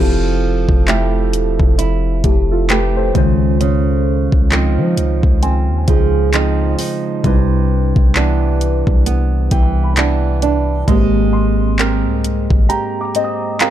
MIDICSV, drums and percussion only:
0, 0, Header, 1, 2, 480
1, 0, Start_track
1, 0, Tempo, 909091
1, 1903, Time_signature, 4, 2, 24, 8
1, 7234, End_track
2, 0, Start_track
2, 0, Title_t, "Drums"
2, 362, Note_on_c, 9, 36, 90
2, 415, Note_off_c, 9, 36, 0
2, 464, Note_on_c, 9, 39, 116
2, 466, Note_on_c, 9, 42, 67
2, 517, Note_off_c, 9, 39, 0
2, 519, Note_off_c, 9, 42, 0
2, 705, Note_on_c, 9, 42, 69
2, 757, Note_off_c, 9, 42, 0
2, 842, Note_on_c, 9, 36, 91
2, 895, Note_off_c, 9, 36, 0
2, 944, Note_on_c, 9, 42, 77
2, 997, Note_off_c, 9, 42, 0
2, 1182, Note_on_c, 9, 42, 69
2, 1184, Note_on_c, 9, 36, 102
2, 1235, Note_off_c, 9, 42, 0
2, 1236, Note_off_c, 9, 36, 0
2, 1424, Note_on_c, 9, 42, 67
2, 1426, Note_on_c, 9, 39, 120
2, 1477, Note_off_c, 9, 42, 0
2, 1479, Note_off_c, 9, 39, 0
2, 1663, Note_on_c, 9, 42, 66
2, 1664, Note_on_c, 9, 36, 104
2, 1716, Note_off_c, 9, 42, 0
2, 1717, Note_off_c, 9, 36, 0
2, 1904, Note_on_c, 9, 42, 61
2, 1957, Note_off_c, 9, 42, 0
2, 2283, Note_on_c, 9, 36, 93
2, 2336, Note_off_c, 9, 36, 0
2, 2386, Note_on_c, 9, 39, 118
2, 2388, Note_on_c, 9, 42, 69
2, 2439, Note_off_c, 9, 39, 0
2, 2441, Note_off_c, 9, 42, 0
2, 2627, Note_on_c, 9, 42, 66
2, 2679, Note_off_c, 9, 42, 0
2, 2763, Note_on_c, 9, 36, 91
2, 2816, Note_off_c, 9, 36, 0
2, 2865, Note_on_c, 9, 42, 79
2, 2918, Note_off_c, 9, 42, 0
2, 3103, Note_on_c, 9, 42, 70
2, 3104, Note_on_c, 9, 36, 100
2, 3156, Note_off_c, 9, 42, 0
2, 3157, Note_off_c, 9, 36, 0
2, 3344, Note_on_c, 9, 42, 66
2, 3347, Note_on_c, 9, 39, 126
2, 3397, Note_off_c, 9, 42, 0
2, 3400, Note_off_c, 9, 39, 0
2, 3583, Note_on_c, 9, 46, 73
2, 3636, Note_off_c, 9, 46, 0
2, 3824, Note_on_c, 9, 36, 107
2, 3824, Note_on_c, 9, 42, 64
2, 3877, Note_off_c, 9, 36, 0
2, 3877, Note_off_c, 9, 42, 0
2, 4203, Note_on_c, 9, 36, 101
2, 4256, Note_off_c, 9, 36, 0
2, 4306, Note_on_c, 9, 39, 113
2, 4308, Note_on_c, 9, 42, 70
2, 4359, Note_off_c, 9, 39, 0
2, 4361, Note_off_c, 9, 42, 0
2, 4547, Note_on_c, 9, 42, 65
2, 4600, Note_off_c, 9, 42, 0
2, 4683, Note_on_c, 9, 36, 90
2, 4736, Note_off_c, 9, 36, 0
2, 4786, Note_on_c, 9, 42, 80
2, 4838, Note_off_c, 9, 42, 0
2, 5022, Note_on_c, 9, 42, 71
2, 5024, Note_on_c, 9, 36, 105
2, 5075, Note_off_c, 9, 42, 0
2, 5076, Note_off_c, 9, 36, 0
2, 5264, Note_on_c, 9, 42, 64
2, 5266, Note_on_c, 9, 39, 120
2, 5316, Note_off_c, 9, 42, 0
2, 5319, Note_off_c, 9, 39, 0
2, 5503, Note_on_c, 9, 42, 71
2, 5556, Note_off_c, 9, 42, 0
2, 5744, Note_on_c, 9, 36, 102
2, 5744, Note_on_c, 9, 42, 59
2, 5796, Note_off_c, 9, 36, 0
2, 5797, Note_off_c, 9, 42, 0
2, 6226, Note_on_c, 9, 39, 110
2, 6228, Note_on_c, 9, 42, 70
2, 6279, Note_off_c, 9, 39, 0
2, 6281, Note_off_c, 9, 42, 0
2, 6465, Note_on_c, 9, 42, 68
2, 6518, Note_off_c, 9, 42, 0
2, 6602, Note_on_c, 9, 36, 93
2, 6655, Note_off_c, 9, 36, 0
2, 6704, Note_on_c, 9, 42, 76
2, 6757, Note_off_c, 9, 42, 0
2, 6942, Note_on_c, 9, 42, 68
2, 6995, Note_off_c, 9, 42, 0
2, 7182, Note_on_c, 9, 42, 67
2, 7185, Note_on_c, 9, 39, 117
2, 7234, Note_off_c, 9, 39, 0
2, 7234, Note_off_c, 9, 42, 0
2, 7234, End_track
0, 0, End_of_file